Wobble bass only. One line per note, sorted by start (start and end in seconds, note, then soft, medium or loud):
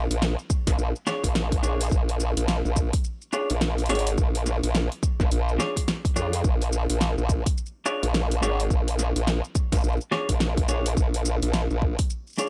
0.10 0.36 A#1 medium
0.67 0.77 A#1 loud
0.78 0.93 A#1 loud
1.24 1.61 A#1 loud
1.63 1.90 A#1 medium
1.91 2.34 A#1 medium
2.37 2.62 A#1 medium
2.65 2.91 A#1 medium
3.50 3.88 A#1 loud
3.90 4.16 G#1 loud
4.18 4.61 A#1 medium
4.63 4.89 A#1 loud
5.20 5.29 A#1 loud
5.31 5.58 A#1 medium
6.16 6.43 F2 medium
6.44 6.87 A#1 medium
6.90 7.15 A#1 loud
7.18 7.44 A#1 loud
8.03 8.41 A#1 loud
8.42 8.69 G#1 medium
8.70 9.13 A#1 medium
9.16 9.42 A#1 loud
9.72 9.82 A#1 loud
9.84 9.98 A#1 medium
10.29 10.67 A#1 loud
10.69 10.95 A#1 medium
10.97 11.40 A#1 medium
11.42 11.68 A#1 loud
11.70 11.96 A#1 loud